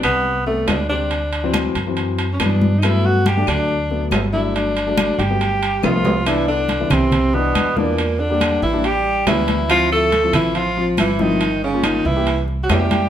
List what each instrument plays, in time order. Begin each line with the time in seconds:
Already playing: grand piano C3 G3 B3
0.03 upright bass C2, tenor saxophone B3, high timbale, claves
0.25 high conga
0.47 grand piano C3 G3 B3, tenor saxophone A3, high conga
0.68 upright bass D2, tenor saxophone D4, high conga, high timbale, low timbale, claves
0.89 grand piano C3 G3 C4, tenor saxophone D4, high conga
1.11 high conga, high timbale
1.33 high conga, high timbale
1.44 grand piano E3 F#3 C4
1.53 high conga, high timbale, claves
1.75 upright bass F#2, high conga, high timbale
1.87 grand piano E3 F#3 C4
1.97 high conga, high timbale
2.18 high conga, high timbale
2.33 tenor saxophone C#4
2.40 upright bass G2, grand piano E3 F#3 B3, tenor saxophone D4, high conga, high timbale, claves
2.62 high conga
2.78 tenor saxophone D#4
2.82 grand piano F#3 A3 B3, tenor saxophone E4, high timbale, claves
3.04 tenor saxophone F#4, high conga
3.26 tenor saxophone G4, high conga, high timbale
3.36 grand piano F#3 A3 D4
3.47 upright bass D2, tenor saxophone D4, high timbale, claves
3.69 high conga
3.90 grand piano F#3 A3 B3, high conga
4.11 upright bass G1, high conga, high timbale, low timbale, claves
4.33 grand piano F#3 A3 D4, tenor saxophone E4, high conga
4.54 tenor saxophone D4, high conga, high timbale
4.75 high conga, high timbale
4.87 grand piano F#3 A3 D4
4.97 high conga, high timbale, claves
5.19 upright bass G1, tenor saxophone G4, high conga, high timbale
5.30 grand piano F#3 A3 B3
5.40 high conga, high timbale
5.62 high conga, high timbale
5.83 upright bass C2, grand piano F3 A3 B3, tenor saxophone F3 F4, high conga, high timbale, claves
6.05 high conga, low timbale
6.26 grand piano E3 B3 D4, tenor saxophone E3 E4, high conga, high timbale, claves
6.48 tenor saxophone D3 D4, high conga
6.69 high conga, high timbale
6.80 grand piano E3 B3 E4
6.90 upright bass C2, tenor saxophone C3 C4, high conga, low conga, high timbale, claves
7.12 high conga, low conga, high timbale
7.33 tenor saxophone B2 B3, grand piano E3 B3 D4, high conga
7.55 upright bass E2, high conga, high timbale, claves
7.77 tenor saxophone A#2 A#3, grand piano E3 B3 D4, high conga
7.98 high conga, high timbale
8.19 tenor saxophone D3 D4, high conga
8.30 grand piano G3 A#3 D4
8.41 high conga, high timbale, claves
8.62 upright bass A1, tenor saxophone E3 E4, high conga
8.73 grand piano G3 A#3 D4
8.84 tenor saxophone G3 G4, high conga, high timbale
9.05 high conga
9.27 upright bass D2, tenor saxophone E3 E4, grand piano G3 A#3 C#4, high conga, high timbale, low timbale, claves
9.48 high conga, high timbale
9.70 grand piano F3 C4 E4, tenor saxophone F3 F4, high conga, high timbale, claves
9.91 tenor saxophone A3 A4, high conga
10.12 high conga, high timbale
10.23 grand piano F3 C4 E4
10.33 upright bass A1, tenor saxophone E3 E4, high conga, low conga, high timbale, claves
10.55 tenor saxophone F3 F4, high conga, high timbale
10.76 grand piano F3 C4 F4, high conga
10.97 upright bass G1, tenor saxophone E3 E4, high conga, high timbale, claves
11.19 tenor saxophone D#3 D#4, grand piano F3 C4 E4, high conga
11.40 high conga, high timbale
11.62 tenor saxophone C#3 C#4, high conga
11.73 grand piano A#3 C#4 F4
11.83 tenor saxophone D#3 D#4, high conga, high timbale, claves
12.05 upright bass C2, tenor saxophone E3 E4, high conga
12.16 grand piano A#3 C#4 G4
12.27 high conga, high timbale
12.48 high conga
12.64 tenor saxophone F#3 F#4
12.69 upright bass F2, tenor saxophone G3 G4, grand piano A#3 C#4 E4, high conga, high timbale, low timbale, claves
12.91 high conga, high timbale